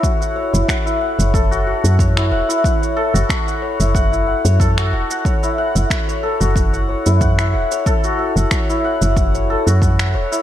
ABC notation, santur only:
X:1
M:4/4
L:1/16
Q:"Swing 16ths" 1/4=92
K:F#m
V:1 name="Santur"
F f c E f E f c A F F f c E f E | f c A F F f c E f E f c A F F f | c E f E f c A F F f c E f E f c | A F F f c E f E f c A F F f c E |]